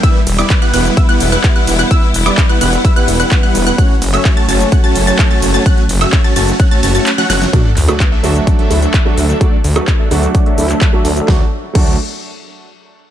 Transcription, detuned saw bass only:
X:1
M:4/4
L:1/8
Q:1/4=128
K:D
V:1 name="Detuned saw bass" clef=bass
z E,,, z E,,, z E,,, z E,,, | z E,,, z E,,, z E,,, z E,,, | z F,,, z F,,, z F,,, z F,,, | z F,,, z F,,, z F,,, z F,,, |
z D,, z D,, z D,, z D,, | z D,, z D,, z D,, z D,, | D,, z D,, z4 z |]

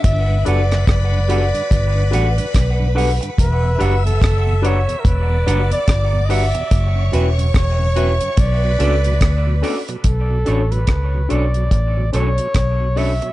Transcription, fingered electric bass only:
X:1
M:4/4
L:1/16
Q:"Swing 16ths" 1/4=72
K:Bm
V:1 name="Fingered electric bass" clef=bass
G,,,2 F,,,2 F,,,3 z G,,,2 A,,, z B,,,3 z | E,,,2 F,,,2 F,,,3 z E,,,2 F,,, z G,,,3 z | F,,,2 E,,,2 E,,,3 z B,,,2 C,,2 D,,2 z2 | B,,,2 A,,,2 C,,2 B,,,2 A,,,2 B,,, z B,,,3 z |]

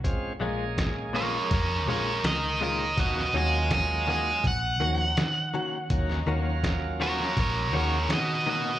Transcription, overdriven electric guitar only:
X:1
M:4/4
L:1/8
Q:1/4=82
K:Ebdor
V:1 name="Overdriven electric guitar"
z3 [Bd] [Bd] [Bd] [Be] [Be] | [Ge] [ea] [ea] [ea] g4 | z3 [Bd] [Bd] [Bd] [Ge] [Ge] |]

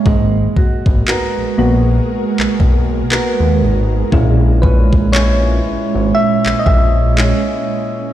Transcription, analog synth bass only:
X:1
M:4/4
L:1/16
Q:"Swing 16ths" 1/4=59
K:G#m
V:1 name="Analog synth bass" clef=bass
G,,,2 z G,,, z A,,, A,,,2 z B,,, B,,,2 z D,, G,,,2 | A,,,6 G,,, G,,, z A,,, A,,,3 z3 |]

